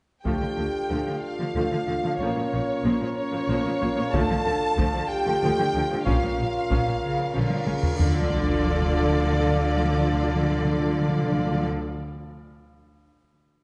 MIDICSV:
0, 0, Header, 1, 12, 480
1, 0, Start_track
1, 0, Key_signature, -1, "minor"
1, 0, Tempo, 643087
1, 196, Time_signature, 6, 3, 24, 8
1, 10178, End_track
2, 0, Start_track
2, 0, Title_t, "Violin section"
2, 0, Program_c, 0, 48
2, 181, Note_on_c, 0, 79, 44
2, 882, Note_off_c, 0, 79, 0
2, 923, Note_on_c, 0, 77, 40
2, 1630, Note_off_c, 0, 77, 0
2, 1637, Note_on_c, 0, 73, 45
2, 2348, Note_off_c, 0, 73, 0
2, 2357, Note_on_c, 0, 73, 65
2, 3069, Note_off_c, 0, 73, 0
2, 3083, Note_on_c, 0, 81, 69
2, 3803, Note_on_c, 0, 79, 76
2, 3806, Note_off_c, 0, 81, 0
2, 4512, Note_off_c, 0, 79, 0
2, 4521, Note_on_c, 0, 77, 57
2, 5700, Note_off_c, 0, 77, 0
2, 5958, Note_on_c, 0, 74, 57
2, 8702, Note_off_c, 0, 74, 0
2, 10178, End_track
3, 0, Start_track
3, 0, Title_t, "Violin section"
3, 0, Program_c, 1, 48
3, 189, Note_on_c, 1, 79, 47
3, 887, Note_off_c, 1, 79, 0
3, 922, Note_on_c, 1, 77, 39
3, 1639, Note_on_c, 1, 73, 48
3, 1644, Note_off_c, 1, 77, 0
3, 2349, Note_off_c, 1, 73, 0
3, 2370, Note_on_c, 1, 73, 59
3, 3075, Note_off_c, 1, 73, 0
3, 3084, Note_on_c, 1, 81, 75
3, 3806, Note_off_c, 1, 81, 0
3, 3809, Note_on_c, 1, 79, 75
3, 4529, Note_off_c, 1, 79, 0
3, 4530, Note_on_c, 1, 77, 57
3, 5705, Note_off_c, 1, 77, 0
3, 5961, Note_on_c, 1, 74, 59
3, 8705, Note_off_c, 1, 74, 0
3, 10178, End_track
4, 0, Start_track
4, 0, Title_t, "Pipe organ"
4, 0, Program_c, 2, 19
4, 189, Note_on_c, 2, 77, 35
4, 190, Note_on_c, 2, 62, 35
4, 192, Note_on_c, 2, 65, 35
4, 195, Note_on_c, 2, 69, 33
4, 1610, Note_off_c, 2, 62, 0
4, 1613, Note_off_c, 2, 69, 0
4, 1639, Note_on_c, 2, 58, 39
4, 1647, Note_on_c, 2, 70, 43
4, 3072, Note_on_c, 2, 62, 58
4, 3081, Note_on_c, 2, 69, 56
4, 3085, Note_off_c, 2, 58, 0
4, 3089, Note_off_c, 2, 70, 0
4, 4495, Note_off_c, 2, 77, 0
4, 4497, Note_off_c, 2, 65, 0
4, 4513, Note_on_c, 2, 65, 47
4, 4516, Note_on_c, 2, 77, 44
4, 4517, Note_on_c, 2, 61, 49
4, 4518, Note_on_c, 2, 70, 44
4, 4521, Note_off_c, 2, 62, 0
4, 4526, Note_off_c, 2, 69, 0
4, 5930, Note_off_c, 2, 65, 0
4, 5931, Note_off_c, 2, 77, 0
4, 5954, Note_on_c, 2, 62, 63
4, 5959, Note_on_c, 2, 65, 57
4, 5959, Note_on_c, 2, 69, 65
4, 5961, Note_on_c, 2, 77, 61
4, 5962, Note_off_c, 2, 61, 0
4, 5962, Note_off_c, 2, 70, 0
4, 8698, Note_off_c, 2, 62, 0
4, 8703, Note_off_c, 2, 65, 0
4, 8703, Note_off_c, 2, 69, 0
4, 8705, Note_off_c, 2, 77, 0
4, 10178, End_track
5, 0, Start_track
5, 0, Title_t, "French horn section"
5, 0, Program_c, 3, 60
5, 187, Note_on_c, 3, 67, 54
5, 885, Note_off_c, 3, 67, 0
5, 902, Note_on_c, 3, 65, 46
5, 1634, Note_off_c, 3, 65, 0
5, 1637, Note_on_c, 3, 61, 54
5, 2348, Note_off_c, 3, 61, 0
5, 2362, Note_on_c, 3, 61, 61
5, 3064, Note_on_c, 3, 69, 78
5, 3071, Note_off_c, 3, 61, 0
5, 3796, Note_off_c, 3, 69, 0
5, 3801, Note_on_c, 3, 67, 82
5, 4511, Note_off_c, 3, 67, 0
5, 4512, Note_on_c, 3, 65, 61
5, 5696, Note_off_c, 3, 65, 0
5, 5964, Note_on_c, 3, 62, 66
5, 8708, Note_off_c, 3, 62, 0
5, 10178, End_track
6, 0, Start_track
6, 0, Title_t, "Viola section"
6, 0, Program_c, 4, 48
6, 187, Note_on_c, 4, 57, 44
6, 188, Note_on_c, 4, 53, 39
6, 300, Note_off_c, 4, 53, 0
6, 304, Note_off_c, 4, 57, 0
6, 309, Note_on_c, 4, 53, 25
6, 316, Note_on_c, 4, 57, 25
6, 359, Note_off_c, 4, 53, 0
6, 364, Note_off_c, 4, 57, 0
6, 431, Note_on_c, 4, 53, 26
6, 433, Note_on_c, 4, 57, 25
6, 481, Note_off_c, 4, 53, 0
6, 483, Note_off_c, 4, 57, 0
6, 678, Note_on_c, 4, 53, 36
6, 679, Note_on_c, 4, 57, 37
6, 791, Note_off_c, 4, 53, 0
6, 791, Note_off_c, 4, 57, 0
6, 800, Note_on_c, 4, 57, 29
6, 802, Note_on_c, 4, 53, 30
6, 848, Note_off_c, 4, 57, 0
6, 849, Note_off_c, 4, 53, 0
6, 1043, Note_on_c, 4, 53, 34
6, 1043, Note_on_c, 4, 57, 37
6, 1091, Note_off_c, 4, 53, 0
6, 1091, Note_off_c, 4, 57, 0
6, 1166, Note_on_c, 4, 57, 43
6, 1167, Note_on_c, 4, 53, 38
6, 1276, Note_off_c, 4, 57, 0
6, 1277, Note_off_c, 4, 53, 0
6, 1286, Note_on_c, 4, 53, 32
6, 1289, Note_on_c, 4, 57, 34
6, 1333, Note_off_c, 4, 53, 0
6, 1336, Note_off_c, 4, 57, 0
6, 1409, Note_on_c, 4, 53, 33
6, 1410, Note_on_c, 4, 57, 38
6, 1456, Note_off_c, 4, 53, 0
6, 1457, Note_off_c, 4, 57, 0
6, 1529, Note_on_c, 4, 53, 33
6, 1529, Note_on_c, 4, 57, 37
6, 1576, Note_off_c, 4, 53, 0
6, 1576, Note_off_c, 4, 57, 0
6, 1654, Note_on_c, 4, 58, 49
6, 1655, Note_on_c, 4, 53, 46
6, 1755, Note_off_c, 4, 53, 0
6, 1757, Note_off_c, 4, 58, 0
6, 1764, Note_on_c, 4, 53, 28
6, 1766, Note_on_c, 4, 58, 35
6, 1812, Note_off_c, 4, 53, 0
6, 1814, Note_off_c, 4, 58, 0
6, 1883, Note_on_c, 4, 53, 30
6, 1888, Note_on_c, 4, 58, 35
6, 1932, Note_off_c, 4, 53, 0
6, 1935, Note_off_c, 4, 58, 0
6, 2124, Note_on_c, 4, 58, 54
6, 2126, Note_on_c, 4, 53, 48
6, 2236, Note_off_c, 4, 58, 0
6, 2238, Note_off_c, 4, 53, 0
6, 2244, Note_on_c, 4, 58, 30
6, 2247, Note_on_c, 4, 53, 36
6, 2292, Note_off_c, 4, 58, 0
6, 2294, Note_off_c, 4, 53, 0
6, 2483, Note_on_c, 4, 53, 49
6, 2485, Note_on_c, 4, 58, 45
6, 2531, Note_off_c, 4, 53, 0
6, 2533, Note_off_c, 4, 58, 0
6, 2604, Note_on_c, 4, 58, 57
6, 2605, Note_on_c, 4, 53, 49
6, 2713, Note_off_c, 4, 58, 0
6, 2714, Note_off_c, 4, 53, 0
6, 2722, Note_on_c, 4, 58, 50
6, 2723, Note_on_c, 4, 53, 50
6, 2771, Note_off_c, 4, 58, 0
6, 2772, Note_off_c, 4, 53, 0
6, 2847, Note_on_c, 4, 58, 52
6, 2848, Note_on_c, 4, 53, 50
6, 2895, Note_off_c, 4, 58, 0
6, 2896, Note_off_c, 4, 53, 0
6, 2963, Note_on_c, 4, 53, 49
6, 2966, Note_on_c, 4, 58, 56
6, 3012, Note_off_c, 4, 53, 0
6, 3014, Note_off_c, 4, 58, 0
6, 3089, Note_on_c, 4, 57, 71
6, 3092, Note_on_c, 4, 53, 61
6, 3200, Note_off_c, 4, 57, 0
6, 3202, Note_off_c, 4, 53, 0
6, 3210, Note_on_c, 4, 57, 47
6, 3212, Note_on_c, 4, 53, 38
6, 3258, Note_off_c, 4, 57, 0
6, 3259, Note_off_c, 4, 53, 0
6, 3328, Note_on_c, 4, 57, 44
6, 3331, Note_on_c, 4, 53, 44
6, 3376, Note_off_c, 4, 57, 0
6, 3379, Note_off_c, 4, 53, 0
6, 3566, Note_on_c, 4, 57, 65
6, 3567, Note_on_c, 4, 53, 63
6, 3667, Note_off_c, 4, 57, 0
6, 3670, Note_off_c, 4, 53, 0
6, 3676, Note_on_c, 4, 57, 45
6, 3678, Note_on_c, 4, 53, 43
6, 3726, Note_off_c, 4, 57, 0
6, 3728, Note_off_c, 4, 53, 0
6, 3927, Note_on_c, 4, 53, 49
6, 3928, Note_on_c, 4, 57, 58
6, 3976, Note_off_c, 4, 53, 0
6, 3976, Note_off_c, 4, 57, 0
6, 4049, Note_on_c, 4, 53, 56
6, 4051, Note_on_c, 4, 57, 58
6, 4150, Note_off_c, 4, 53, 0
6, 4154, Note_off_c, 4, 57, 0
6, 4159, Note_on_c, 4, 53, 47
6, 4163, Note_on_c, 4, 57, 49
6, 4209, Note_off_c, 4, 53, 0
6, 4212, Note_off_c, 4, 57, 0
6, 4281, Note_on_c, 4, 57, 50
6, 4285, Note_on_c, 4, 53, 48
6, 4331, Note_off_c, 4, 57, 0
6, 4334, Note_off_c, 4, 53, 0
6, 4402, Note_on_c, 4, 53, 44
6, 4402, Note_on_c, 4, 57, 51
6, 4451, Note_off_c, 4, 53, 0
6, 4451, Note_off_c, 4, 57, 0
6, 4514, Note_on_c, 4, 61, 61
6, 4517, Note_on_c, 4, 53, 54
6, 4628, Note_off_c, 4, 61, 0
6, 4632, Note_off_c, 4, 53, 0
6, 4637, Note_on_c, 4, 61, 35
6, 4641, Note_on_c, 4, 53, 36
6, 4688, Note_off_c, 4, 61, 0
6, 4691, Note_off_c, 4, 53, 0
6, 4760, Note_on_c, 4, 53, 35
6, 4763, Note_on_c, 4, 61, 33
6, 4810, Note_off_c, 4, 53, 0
6, 4812, Note_off_c, 4, 61, 0
6, 5002, Note_on_c, 4, 53, 51
6, 5004, Note_on_c, 4, 61, 44
6, 5116, Note_off_c, 4, 61, 0
6, 5117, Note_off_c, 4, 53, 0
6, 5125, Note_on_c, 4, 53, 31
6, 5125, Note_on_c, 4, 61, 32
6, 5174, Note_off_c, 4, 53, 0
6, 5174, Note_off_c, 4, 61, 0
6, 5359, Note_on_c, 4, 53, 38
6, 5362, Note_on_c, 4, 61, 35
6, 5409, Note_off_c, 4, 53, 0
6, 5411, Note_off_c, 4, 61, 0
6, 5474, Note_on_c, 4, 61, 42
6, 5475, Note_on_c, 4, 53, 49
6, 5591, Note_off_c, 4, 53, 0
6, 5592, Note_off_c, 4, 61, 0
6, 5600, Note_on_c, 4, 53, 32
6, 5600, Note_on_c, 4, 61, 36
6, 5650, Note_off_c, 4, 53, 0
6, 5650, Note_off_c, 4, 61, 0
6, 5715, Note_on_c, 4, 61, 38
6, 5718, Note_on_c, 4, 53, 36
6, 5766, Note_off_c, 4, 61, 0
6, 5768, Note_off_c, 4, 53, 0
6, 5838, Note_on_c, 4, 61, 35
6, 5842, Note_on_c, 4, 53, 35
6, 5888, Note_off_c, 4, 61, 0
6, 5891, Note_off_c, 4, 53, 0
6, 5970, Note_on_c, 4, 65, 62
6, 5972, Note_on_c, 4, 69, 62
6, 8714, Note_off_c, 4, 65, 0
6, 8716, Note_off_c, 4, 69, 0
6, 10178, End_track
7, 0, Start_track
7, 0, Title_t, "Cello section"
7, 0, Program_c, 5, 48
7, 193, Note_on_c, 5, 50, 40
7, 242, Note_off_c, 5, 50, 0
7, 310, Note_on_c, 5, 50, 30
7, 359, Note_off_c, 5, 50, 0
7, 425, Note_on_c, 5, 50, 27
7, 476, Note_off_c, 5, 50, 0
7, 669, Note_on_c, 5, 50, 43
7, 719, Note_off_c, 5, 50, 0
7, 792, Note_on_c, 5, 50, 28
7, 841, Note_off_c, 5, 50, 0
7, 1036, Note_on_c, 5, 50, 32
7, 1085, Note_off_c, 5, 50, 0
7, 1155, Note_on_c, 5, 50, 44
7, 1205, Note_off_c, 5, 50, 0
7, 1279, Note_on_c, 5, 50, 31
7, 1328, Note_off_c, 5, 50, 0
7, 1397, Note_on_c, 5, 50, 38
7, 1446, Note_off_c, 5, 50, 0
7, 1518, Note_on_c, 5, 50, 34
7, 1567, Note_off_c, 5, 50, 0
7, 1641, Note_on_c, 5, 46, 51
7, 1690, Note_off_c, 5, 46, 0
7, 1763, Note_on_c, 5, 46, 36
7, 1812, Note_off_c, 5, 46, 0
7, 1890, Note_on_c, 5, 46, 34
7, 1937, Note_off_c, 5, 46, 0
7, 2128, Note_on_c, 5, 46, 57
7, 2176, Note_off_c, 5, 46, 0
7, 2245, Note_on_c, 5, 46, 43
7, 2293, Note_off_c, 5, 46, 0
7, 2487, Note_on_c, 5, 46, 37
7, 2535, Note_off_c, 5, 46, 0
7, 2607, Note_on_c, 5, 46, 59
7, 2655, Note_off_c, 5, 46, 0
7, 2730, Note_on_c, 5, 46, 51
7, 2778, Note_off_c, 5, 46, 0
7, 2847, Note_on_c, 5, 46, 44
7, 2895, Note_off_c, 5, 46, 0
7, 2972, Note_on_c, 5, 46, 46
7, 3019, Note_off_c, 5, 46, 0
7, 3088, Note_on_c, 5, 50, 74
7, 3136, Note_off_c, 5, 50, 0
7, 3208, Note_on_c, 5, 50, 50
7, 3256, Note_off_c, 5, 50, 0
7, 3329, Note_on_c, 5, 50, 46
7, 3377, Note_off_c, 5, 50, 0
7, 3564, Note_on_c, 5, 50, 73
7, 3613, Note_off_c, 5, 50, 0
7, 3691, Note_on_c, 5, 50, 53
7, 3738, Note_off_c, 5, 50, 0
7, 3930, Note_on_c, 5, 50, 52
7, 3978, Note_off_c, 5, 50, 0
7, 4052, Note_on_c, 5, 50, 69
7, 4100, Note_off_c, 5, 50, 0
7, 4174, Note_on_c, 5, 50, 49
7, 4221, Note_off_c, 5, 50, 0
7, 4296, Note_on_c, 5, 50, 50
7, 4343, Note_off_c, 5, 50, 0
7, 4422, Note_on_c, 5, 50, 48
7, 4467, Note_off_c, 5, 50, 0
7, 4538, Note_on_c, 5, 46, 61
7, 4584, Note_off_c, 5, 46, 0
7, 4655, Note_on_c, 5, 46, 41
7, 4702, Note_off_c, 5, 46, 0
7, 4781, Note_on_c, 5, 46, 35
7, 4826, Note_off_c, 5, 46, 0
7, 5011, Note_on_c, 5, 46, 55
7, 5059, Note_off_c, 5, 46, 0
7, 5133, Note_on_c, 5, 46, 35
7, 5180, Note_off_c, 5, 46, 0
7, 5247, Note_on_c, 5, 49, 47
7, 5471, Note_off_c, 5, 49, 0
7, 5488, Note_on_c, 5, 50, 44
7, 5723, Note_off_c, 5, 50, 0
7, 5727, Note_on_c, 5, 49, 46
7, 5966, Note_on_c, 5, 50, 66
7, 5967, Note_off_c, 5, 49, 0
7, 8710, Note_off_c, 5, 50, 0
7, 10178, End_track
8, 0, Start_track
8, 0, Title_t, "Timpani"
8, 0, Program_c, 6, 47
8, 3087, Note_on_c, 6, 50, 52
8, 3778, Note_off_c, 6, 50, 0
8, 5964, Note_on_c, 6, 50, 70
8, 6019, Note_off_c, 6, 50, 0
8, 6019, Note_on_c, 6, 50, 54
8, 6073, Note_off_c, 6, 50, 0
8, 6073, Note_on_c, 6, 50, 59
8, 6128, Note_off_c, 6, 50, 0
8, 6128, Note_on_c, 6, 50, 63
8, 6183, Note_off_c, 6, 50, 0
8, 6185, Note_on_c, 6, 50, 67
8, 6239, Note_off_c, 6, 50, 0
8, 6239, Note_on_c, 6, 50, 60
8, 6294, Note_off_c, 6, 50, 0
8, 6294, Note_on_c, 6, 50, 63
8, 6347, Note_off_c, 6, 50, 0
8, 6347, Note_on_c, 6, 50, 60
8, 6403, Note_off_c, 6, 50, 0
8, 6405, Note_on_c, 6, 50, 66
8, 6456, Note_off_c, 6, 50, 0
8, 6456, Note_on_c, 6, 50, 62
8, 6512, Note_off_c, 6, 50, 0
8, 6513, Note_on_c, 6, 50, 59
8, 6569, Note_off_c, 6, 50, 0
8, 6571, Note_on_c, 6, 50, 63
8, 6625, Note_off_c, 6, 50, 0
8, 6625, Note_on_c, 6, 50, 61
8, 6681, Note_off_c, 6, 50, 0
8, 6682, Note_on_c, 6, 50, 64
8, 6732, Note_off_c, 6, 50, 0
8, 6732, Note_on_c, 6, 50, 66
8, 6787, Note_off_c, 6, 50, 0
8, 6787, Note_on_c, 6, 50, 70
8, 6843, Note_off_c, 6, 50, 0
8, 6846, Note_on_c, 6, 50, 66
8, 6901, Note_off_c, 6, 50, 0
8, 6901, Note_on_c, 6, 50, 57
8, 6953, Note_off_c, 6, 50, 0
8, 6953, Note_on_c, 6, 50, 67
8, 7007, Note_off_c, 6, 50, 0
8, 7007, Note_on_c, 6, 50, 61
8, 7062, Note_off_c, 6, 50, 0
8, 7065, Note_on_c, 6, 50, 69
8, 7121, Note_off_c, 6, 50, 0
8, 7121, Note_on_c, 6, 50, 66
8, 7177, Note_off_c, 6, 50, 0
8, 7180, Note_on_c, 6, 50, 70
8, 7235, Note_off_c, 6, 50, 0
8, 7237, Note_on_c, 6, 50, 62
8, 7292, Note_off_c, 6, 50, 0
8, 7292, Note_on_c, 6, 50, 73
8, 7348, Note_off_c, 6, 50, 0
8, 7349, Note_on_c, 6, 50, 58
8, 7402, Note_off_c, 6, 50, 0
8, 7402, Note_on_c, 6, 50, 62
8, 7458, Note_off_c, 6, 50, 0
8, 7459, Note_on_c, 6, 50, 64
8, 7512, Note_off_c, 6, 50, 0
8, 7512, Note_on_c, 6, 50, 66
8, 7566, Note_off_c, 6, 50, 0
8, 7566, Note_on_c, 6, 50, 61
8, 7620, Note_off_c, 6, 50, 0
8, 7620, Note_on_c, 6, 50, 67
8, 7673, Note_off_c, 6, 50, 0
8, 7673, Note_on_c, 6, 50, 61
8, 7729, Note_off_c, 6, 50, 0
8, 7729, Note_on_c, 6, 50, 67
8, 7781, Note_off_c, 6, 50, 0
8, 7781, Note_on_c, 6, 50, 59
8, 7836, Note_off_c, 6, 50, 0
8, 7840, Note_on_c, 6, 50, 67
8, 7893, Note_off_c, 6, 50, 0
8, 7893, Note_on_c, 6, 50, 63
8, 7947, Note_off_c, 6, 50, 0
8, 7947, Note_on_c, 6, 50, 67
8, 8003, Note_off_c, 6, 50, 0
8, 8003, Note_on_c, 6, 50, 58
8, 8053, Note_off_c, 6, 50, 0
8, 8053, Note_on_c, 6, 50, 67
8, 8109, Note_off_c, 6, 50, 0
8, 8109, Note_on_c, 6, 50, 58
8, 8164, Note_off_c, 6, 50, 0
8, 8164, Note_on_c, 6, 50, 67
8, 8219, Note_off_c, 6, 50, 0
8, 8220, Note_on_c, 6, 50, 58
8, 8275, Note_off_c, 6, 50, 0
8, 8276, Note_on_c, 6, 50, 64
8, 8332, Note_off_c, 6, 50, 0
8, 8335, Note_on_c, 6, 50, 64
8, 8389, Note_off_c, 6, 50, 0
8, 8389, Note_on_c, 6, 50, 68
8, 8445, Note_off_c, 6, 50, 0
8, 8449, Note_on_c, 6, 50, 60
8, 8501, Note_off_c, 6, 50, 0
8, 8501, Note_on_c, 6, 50, 66
8, 8556, Note_off_c, 6, 50, 0
8, 8556, Note_on_c, 6, 50, 58
8, 8612, Note_off_c, 6, 50, 0
8, 8617, Note_on_c, 6, 50, 69
8, 8673, Note_off_c, 6, 50, 0
8, 8677, Note_on_c, 6, 50, 60
8, 8733, Note_off_c, 6, 50, 0
8, 10178, End_track
9, 0, Start_track
9, 0, Title_t, "Double bass section"
9, 0, Program_c, 7, 48
9, 190, Note_on_c, 7, 38, 43
9, 240, Note_off_c, 7, 38, 0
9, 436, Note_on_c, 7, 38, 29
9, 485, Note_off_c, 7, 38, 0
9, 680, Note_on_c, 7, 38, 44
9, 728, Note_off_c, 7, 38, 0
9, 1163, Note_on_c, 7, 38, 50
9, 1211, Note_off_c, 7, 38, 0
9, 1398, Note_on_c, 7, 38, 30
9, 1447, Note_off_c, 7, 38, 0
9, 1634, Note_on_c, 7, 34, 52
9, 1684, Note_off_c, 7, 34, 0
9, 1885, Note_on_c, 7, 34, 34
9, 1933, Note_off_c, 7, 34, 0
9, 2119, Note_on_c, 7, 34, 56
9, 2168, Note_off_c, 7, 34, 0
9, 2602, Note_on_c, 7, 34, 62
9, 2651, Note_off_c, 7, 34, 0
9, 2844, Note_on_c, 7, 34, 48
9, 2893, Note_off_c, 7, 34, 0
9, 3088, Note_on_c, 7, 38, 71
9, 3136, Note_off_c, 7, 38, 0
9, 3329, Note_on_c, 7, 38, 52
9, 3377, Note_off_c, 7, 38, 0
9, 3564, Note_on_c, 7, 38, 73
9, 3613, Note_off_c, 7, 38, 0
9, 4050, Note_on_c, 7, 38, 69
9, 4098, Note_off_c, 7, 38, 0
9, 4289, Note_on_c, 7, 38, 47
9, 4337, Note_off_c, 7, 38, 0
9, 4529, Note_on_c, 7, 34, 58
9, 4577, Note_off_c, 7, 34, 0
9, 4768, Note_on_c, 7, 34, 35
9, 4816, Note_off_c, 7, 34, 0
9, 5008, Note_on_c, 7, 34, 53
9, 5057, Note_off_c, 7, 34, 0
9, 5487, Note_on_c, 7, 34, 55
9, 5535, Note_off_c, 7, 34, 0
9, 5727, Note_on_c, 7, 34, 37
9, 5775, Note_off_c, 7, 34, 0
9, 5965, Note_on_c, 7, 38, 66
9, 8709, Note_off_c, 7, 38, 0
9, 10178, End_track
10, 0, Start_track
10, 0, Title_t, "Cymbal swell"
10, 0, Program_c, 8, 119
10, 4525, Note_on_c, 8, 60, 50
10, 5966, Note_off_c, 8, 60, 0
10, 10178, End_track
11, 0, Start_track
11, 0, Title_t, "Sub drop"
11, 0, Program_c, 10, 103
11, 5964, Note_on_c, 10, 60, 68
11, 7403, Note_off_c, 10, 60, 0
11, 10178, End_track
12, 0, Start_track
12, 0, Title_t, "Taiko and cinematic ensemble drums"
12, 191, Note_on_c, 9, 41, 43
12, 266, Note_off_c, 9, 41, 0
12, 3088, Note_on_c, 9, 41, 84
12, 3162, Note_off_c, 9, 41, 0
12, 3569, Note_on_c, 9, 41, 67
12, 3644, Note_off_c, 9, 41, 0
12, 4527, Note_on_c, 9, 41, 76
12, 4602, Note_off_c, 9, 41, 0
12, 5008, Note_on_c, 9, 41, 62
12, 5083, Note_off_c, 9, 41, 0
12, 5605, Note_on_c, 9, 48, 70
12, 5679, Note_off_c, 9, 48, 0
12, 5724, Note_on_c, 9, 48, 82
12, 5798, Note_off_c, 9, 48, 0
12, 5845, Note_on_c, 9, 43, 80
12, 5920, Note_off_c, 9, 43, 0
12, 5967, Note_on_c, 9, 43, 77
12, 6041, Note_off_c, 9, 43, 0
12, 10178, End_track
0, 0, End_of_file